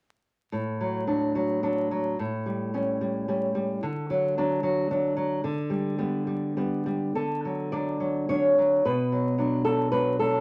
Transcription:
0.52 2.14 A2 soft
0.81 1.06 F#3 soft
1.07 1.34 F#3 soft
1.07 1.62 D4 soft
1.35 1.62 F#3 soft
1.63 1.90 F#3 soft
1.63 2.14 D4 soft
1.91 2.16 F#3 soft
2.19 3.80 A2 soft
2.46 2.73 G3 soft
2.74 3.00 G3 soft
2.74 3.27 C#4 soft
3.01 3.27 G3 soft
3.28 3.54 G3 soft
3.28 3.79 C#4 soft
3.55 3.80 G3 soft
3.83 5.41 D3 medium
4.10 4.37 F#3 soft
4.38 4.62 F#3 soft
4.38 4.89 D4 soft
4.63 4.90 F#3 soft
4.91 5.15 F#3 soft
4.91 5.40 D4 soft
5.17 5.41 F#3 soft
5.44 7.11 D3 medium
5.70 5.97 G3 soft
5.98 6.26 G3 soft
5.98 6.56 B3 soft
6.27 6.56 G3 soft
6.57 6.85 G3 soft
6.57 7.12 B3 soft
6.86 7.12 G3 soft
7.15 8.80 D3 soft
7.15 7.70 A4 medium
7.45 7.72 F#3 soft
7.72 7.99 F#3 soft
7.72 8.29 D4 soft
7.72 8.26 D5 medium
8.00 8.28 F#3 soft
8.29 8.57 F#3 soft
8.29 8.80 D4 soft
8.29 8.82 C#5 medium
8.58 8.82 F#3 soft
8.85 10.40 B2 soft
8.85 9.62 B4 medium
9.12 9.37 F#3 soft
9.38 9.64 F#3 soft
9.38 9.91 D4 soft
9.65 9.91 F#3 soft
9.65 9.91 A4 medium
9.92 10.19 F#3 soft
9.92 10.40 D4 soft
9.92 10.18 B4 medium
10.19 10.40 F#3 soft
10.19 10.40 A4 medium

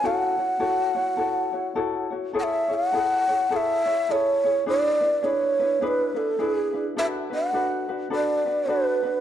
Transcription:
0.04 0.38 E4 medium
0.04 0.37 F#4 medium
0.04 0.39 A4 medium
0.04 0.37 C#5 medium
0.04 2.14 F#5 loud
0.38 0.59 E4 soft
0.38 0.59 F#4 soft
0.38 0.59 C#5 soft
0.60 0.96 E4 medium
0.60 0.95 F#4 medium
0.60 0.96 A4 medium
0.60 0.94 C#5 medium
0.95 1.17 E4 soft
0.95 1.17 F#4 medium
0.95 1.18 C#5 medium
1.17 1.53 E4 medium
1.17 1.52 F#4 medium
1.17 1.53 A4 medium
1.17 1.51 C#5 medium
1.52 1.75 E4 soft
1.52 1.75 F#4 soft
1.52 1.76 C#5 soft
1.75 2.12 E4 medium
1.75 2.11 F#4 medium
1.75 2.11 A4 medium
1.75 2.09 C#5 medium
2.10 2.33 E4 soft
2.10 2.34 F#4 medium
2.10 2.34 C#5 medium
2.33 2.70 E4 medium
2.33 2.69 G#4 medium
2.33 2.68 A4 medium
2.33 2.67 C#5 medium
2.40 2.76 E5 medium
2.40 2.44 F#5 medium
2.68 2.92 E4 soft
2.68 2.93 G#4 soft
2.68 2.92 C#5 soft
2.74 3.53 F#5 loud
2.93 3.28 E4 medium
2.93 3.28 G#4 medium
2.93 3.28 A4 medium
2.93 3.27 C#5 medium
3.28 3.50 E4 soft
3.28 3.51 G#4 soft
3.28 3.50 C#5 medium
3.50 3.86 E4 medium
3.50 3.86 G#4 medium
3.50 3.86 A4 medium
3.50 3.85 C#5 medium
3.50 3.57 F#5 loud
3.56 4.13 E5 loud
3.86 4.09 E4 soft
3.86 4.09 G#4 soft
3.86 4.09 C#5 soft
4.09 4.44 E4 medium
4.09 4.44 G#4 medium
4.09 4.44 A4 medium
4.09 4.43 C#5 medium
4.09 4.68 C#5 loud
4.45 4.66 E4 soft
4.45 4.65 G#4 soft
4.45 4.67 C#5 medium
4.66 5.01 D4 medium
4.66 5.01 E4 medium
4.66 5.01 G#4 medium
4.66 5.00 B4 medium
4.66 5.26 D5 loud
5.01 5.23 D4 soft
5.01 5.23 E4 soft
5.01 5.24 B4 soft
5.23 5.59 D4 medium
5.23 5.59 E4 medium
5.23 5.58 G#4 medium
5.23 5.58 B4 medium
5.23 5.83 C#5 medium
5.60 5.81 D4 soft
5.60 5.81 E4 soft
5.60 5.81 B4 medium
5.81 6.16 D4 medium
5.81 6.15 E4 medium
5.81 6.16 G#4 medium
5.81 6.13 B4 medium
5.81 5.88 C#5 medium
5.87 6.18 B4 medium
6.14 6.38 D4 soft
6.14 6.38 E4 soft
6.14 6.41 A4 medium
6.14 6.38 B4 soft
6.39 6.74 D4 medium
6.39 6.73 E4 medium
6.39 6.74 G#4 medium
6.39 6.52 A4 medium
6.39 6.72 B4 medium
6.52 6.86 G#4 medium
6.73 6.96 D4 soft
6.73 6.97 E4 soft
6.73 6.96 B4 soft
6.97 7.31 D4 medium
6.97 7.31 F#4 medium
6.97 7.31 A4 medium
6.97 7.29 B4 medium
6.97 7.06 E5 medium
7.30 7.53 D4 soft
7.30 7.53 F#4 soft
7.30 7.53 B4 medium
7.35 7.87 F#5 medium
7.53 7.89 D4 medium
7.53 7.89 F#4 medium
7.53 7.88 A4 medium
7.53 7.87 B4 medium
7.89 8.10 D4 soft
7.89 8.10 F#4 medium
7.89 8.10 B4 medium
8.10 8.46 D4 medium
8.10 8.45 F#4 medium
8.10 8.46 A4 medium
8.10 8.44 B4 medium
8.15 8.71 D5 medium
8.45 8.67 D4 soft
8.45 8.68 F#4 soft
8.45 8.68 B4 soft
8.68 9.03 D4 medium
8.68 9.03 F#4 medium
8.68 9.03 A4 medium
8.68 9.02 B4 medium
8.68 9.21 B4 medium
9.03 9.21 D4 soft
9.03 9.21 F#4 soft
9.03 9.21 B4 medium

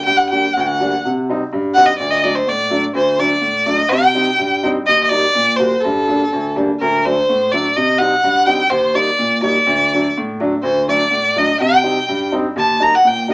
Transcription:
0.05 0.43 G2 medium
0.05 0.18 G5 loud
0.17 0.29 F#5 medium
0.30 0.44 G3 medium
0.30 0.43 A#3 soft
0.30 0.44 D4 medium
0.30 0.55 G5 medium
0.53 0.92 D2 medium
0.53 0.62 F#5 medium
0.60 0.68 G5 medium
0.66 1.02 F#5 medium
0.80 0.92 G3 medium
0.80 0.92 A#3 medium
0.80 0.92 D4 medium
1.05 1.40 C3 medium
1.29 1.40 G3 medium
1.29 1.40 C4 medium
1.29 1.41 D#4 medium
1.53 1.88 G2 medium
1.74 1.88 G3 medium
1.74 1.88 C4 medium
1.74 1.89 D#4 medium
1.74 1.87 F#5 loud
1.86 1.98 D#5 medium
1.98 2.35 D2 medium
1.98 2.12 D5 medium
2.10 2.19 D5 medium
2.10 2.15 D#5 medium
2.17 2.19 D#5 medium
2.17 2.25 D#5 medium
2.23 2.35 F#3 medium
2.23 2.36 A3 medium
2.23 2.36 D4 medium
2.23 2.37 D5 medium
2.35 2.50 C5 medium
2.47 2.83 A2 medium
2.47 2.84 D5 medium
2.70 2.83 F#3 medium
2.70 2.83 A3 medium
2.70 2.83 D4 medium
2.94 3.30 D2 medium
2.94 3.21 C5 medium
3.18 3.31 F#3 medium
3.18 3.31 A3 medium
3.18 3.31 D4 medium
3.18 3.67 D5 medium
3.41 3.78 A2 medium
3.66 3.79 F#3 medium
3.66 3.79 A3 medium
3.66 3.79 D4 medium
3.66 3.91 D#5 medium
3.89 4.27 C3 medium
3.89 4.62 G5 loud
4.14 4.26 G3 medium
4.14 4.27 C4 medium
4.14 4.27 D#4 medium
4.39 4.75 G2 medium
4.63 4.75 G3 medium
4.63 4.75 C4 medium
4.63 4.75 D#4 medium
4.87 5.23 D#2 medium
4.87 5.03 D#5 loud
5.03 5.10 D#5 medium
5.09 5.23 G3 medium
5.09 5.23 A#3 medium
5.09 5.23 D#4 medium
5.09 5.58 D5 loud
5.35 5.71 A#2 medium
5.56 5.71 G3 medium
5.56 5.72 A#3 medium
5.56 5.71 F#4 medium
5.56 5.82 C5 medium
5.80 6.54 A4 medium
5.85 6.20 G2 medium
6.08 6.20 G3 medium
6.08 6.20 A#3 soft
6.08 6.20 D4 medium
6.32 6.68 D2 medium
6.56 6.68 G3 medium
6.56 6.68 A#3 medium
6.56 6.68 D4 medium
6.80 7.16 D2 medium
6.80 7.07 A#4 medium
7.05 7.16 F#3 medium
7.05 7.16 A3 medium
7.05 7.16 D4 medium
7.05 7.53 C5 medium
7.29 7.64 A2 medium
7.51 7.64 F#3 medium
7.51 7.65 A3 medium
7.51 7.64 D4 medium
7.51 7.78 D5 medium
7.76 8.12 C3 medium
7.76 8.00 D#5 medium
7.98 8.12 G3 medium
7.98 8.12 C4 medium
7.98 8.12 D#4 medium
7.98 8.48 F#5 loud
8.24 8.59 G2 medium
8.46 8.59 G3 medium
8.46 8.60 C4 medium
8.46 8.60 D#4 medium
8.46 8.71 G5 medium
8.70 9.07 D#2 medium
8.70 8.97 C5 medium
8.94 9.07 G3 medium
8.94 9.07 A#3 medium
8.94 9.07 D#4 medium
8.94 9.42 D5 medium
9.19 9.55 A#2 medium
9.42 9.55 G3 medium
9.42 9.55 A#3 medium
9.42 9.56 D#4 medium
9.42 10.12 D5 medium
9.67 10.03 D2 medium
9.93 10.04 F#3 medium
9.93 10.05 A3 medium
9.93 10.05 D4 medium
10.17 10.53 A2 medium
10.40 10.52 F#3 medium
10.40 10.52 A3 medium
10.40 10.52 D4 medium
10.63 10.99 D2 medium
10.63 10.86 C5 medium
10.88 11.00 F#3 medium
10.88 11.00 A3 medium
10.88 11.00 D4 medium
10.88 11.40 D5 medium
11.11 11.47 A2 medium
11.36 11.48 F#3 medium
11.36 11.48 A3 medium
11.36 11.48 D4 medium
11.36 11.60 D#5 medium
11.60 11.96 C3 medium
11.60 12.29 G5 loud
11.83 11.96 G3 medium
11.83 11.96 C4 medium
11.83 11.96 D#4 medium
12.09 12.44 G2 medium
12.32 12.44 G3 medium
12.32 12.44 C4 medium
12.32 12.44 D#4 medium
12.56 12.92 D#2 medium
12.56 12.84 A5 medium
12.79 12.92 G3 medium
12.79 12.92 A#3 medium
12.79 12.92 D#4 medium
12.79 12.96 A#5 medium
12.95 13.09 F#5 medium
13.04 13.34 A#2 medium
13.04 13.30 G5 loud
13.28 13.34 G3 medium
13.28 13.34 A#3 medium
13.28 13.34 D#4 medium

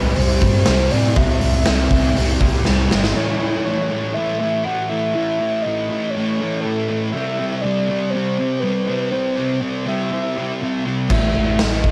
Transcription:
0.00 0.11 C2 medium
0.00 0.17 C3 medium
0.00 0.17 G3 medium
0.00 0.18 C4 medium
0.00 0.17 B4 medium
0.16 0.36 C2 medium
0.16 0.65 C3 medium
0.16 0.67 G3 loud
0.16 0.67 C4 loud
0.16 0.65 C5 medium
0.16 open hi-hat medium
0.41 0.61 G2 medium
0.41 kick medium
0.41 open hi-hat medium
0.65 0.86 C2 loud
0.65 1.16 C3 medium
0.65 0.93 G3 medium
0.65 0.91 C4 medium
0.65 0.93 C5 loud
0.65 snare loud
0.65 open hi-hat medium
0.91 1.11 A2 medium
0.91 1.17 C4 medium
0.91 1.18 D5 loud
0.91 open hi-hat medium
0.95 1.16 G3 medium
1.16 1.36 C2 loud
1.16 2.16 C3 loud
1.16 1.93 G3 medium
1.16 1.91 C4 loud
1.16 2.66 E5 loud
1.16 kick loud
1.16 open hi-hat medium
1.41 1.62 C2 medium
1.41 open hi-hat medium
1.66 1.86 C2 loud
1.66 snare loud
1.66 open hi-hat medium
1.91 2.10 C2 medium
1.91 2.16 G3 medium
1.91 2.17 C4 medium
1.91 kick medium
1.91 open hi-hat medium
2.16 2.36 C2 medium
2.16 2.63 C3 medium
2.16 2.65 G3 loud
2.16 2.65 C4 medium
2.16 open hi-hat medium
2.41 2.60 C2 medium
2.41 kick medium
2.41 open hi-hat medium
2.65 2.85 C2 medium
2.65 3.14 C3 medium
2.65 2.91 G3 medium
2.65 2.89 C4 medium
2.65 snare medium
2.90 3.10 G1 loud
2.90 3.15 G3 medium
2.90 3.14 C4 medium
2.90 snare loud
3.04 snare medium
3.15 3.64 A2 loud
3.15 3.41 E3 loud
3.15 3.39 A3 loud
3.15 3.62 C#5 loud
3.39 3.65 E3 medium
3.39 3.66 A3 medium
3.64 3.91 A2 medium
3.64 3.90 E3 medium
3.64 3.90 A3 medium
3.64 4.16 C#5 loud
3.90 4.13 A2 medium
3.90 4.15 E3 medium
3.90 4.16 A3 medium
4.14 4.63 A2 medium
4.14 4.42 E3 medium
4.14 4.39 A3 medium
4.14 4.38 E5 loud
4.39 4.66 E3 medium
4.39 4.66 A3 medium
4.39 4.63 E5 medium
4.65 5.13 A2 medium
4.65 4.91 E3 medium
4.65 4.89 A3 medium
4.65 4.90 F#5 loud
4.89 5.14 E3 medium
4.89 5.15 A3 medium
4.89 5.63 E5 loud
5.14 5.63 A2 medium
5.14 5.41 E3 loud
5.14 5.38 A3 loud
5.39 5.66 E3 soft
5.39 5.66 A3 medium
5.62 5.90 A2 medium
5.62 6.12 D#5 loud
5.67 5.90 E3 medium
5.67 5.89 A3 loud
5.90 6.14 A2 medium
5.90 6.16 E3 medium
5.90 6.16 A3 medium
6.10 6.62 C#5 loud
6.15 6.64 A2 medium
6.15 6.42 E3 medium
6.15 6.39 A3 medium
6.40 6.65 E3 medium
6.40 6.65 A3 medium
6.61 7.00 A4 medium
6.65 7.13 A2 medium
6.65 6.91 E3 medium
6.65 6.88 A3 loud
6.89 7.15 E3 medium
6.89 7.12 A3 medium
7.11 7.63 C3 medium
7.11 7.63 E5 loud
7.15 7.40 G3 medium
7.15 7.38 C4 loud
7.38 7.64 G3 medium
7.38 7.65 C4 medium
7.61 7.90 C3 medium
7.61 7.90 G3 medium
7.61 8.12 D5 medium
7.66 7.88 C4 medium
7.89 8.13 C3 medium
7.89 8.14 G3 medium
7.89 8.15 C4 medium
8.10 8.61 C3 medium
8.10 8.61 C5 loud
8.15 8.40 G3 medium
8.15 8.38 C4 medium
8.39 8.63 G3 medium
8.39 8.64 C4 medium
8.60 9.11 C3 medium
8.60 9.11 B4 medium
8.64 8.88 G3 loud
8.64 8.86 C4 loud
8.88 9.12 G3 medium
8.88 9.12 C4 medium
9.11 9.60 C3 loud
9.11 9.38 G3 loud
9.11 9.35 C4 loud
9.11 9.58 C5 medium
9.37 9.61 G3 medium
9.37 9.62 C4 medium
9.61 9.87 C3 medium
9.61 9.86 G3 medium
9.61 9.84 C4 medium
9.86 10.10 C3 medium
9.86 10.11 G3 medium
9.86 10.11 C4 medium
9.86 10.82 E5 loud
10.11 10.60 C3 medium
10.11 10.38 G3 medium
10.11 10.36 C4 medium
10.37 10.61 G3 medium
10.37 10.62 C4 medium
10.62 11.09 C3 medium
10.62 10.87 G3 loud
10.62 10.85 C4 loud
10.86 11.10 G3 medium
10.86 11.09 C4 medium
11.10 11.33 A1 medium
11.10 11.60 A2 medium
11.10 11.36 E3 medium
11.10 11.35 A3 loud
11.10 11.63 E5 loud
11.10 kick loud
11.10 crash medium
11.35 11.59 A1 medium
11.35 11.61 E3 medium
11.35 11.62 A3 medium
11.59 11.83 A1 medium
11.59 11.87 A2 medium
11.59 11.86 E3 medium
11.59 11.85 A3 medium
11.59 11.91 D#5 medium
11.59 snare loud
11.59 open hi-hat medium
11.84 11.91 A1 medium
11.84 11.91 A2 medium
11.84 11.91 E3 medium
11.84 11.91 A3 medium
11.84 kick medium

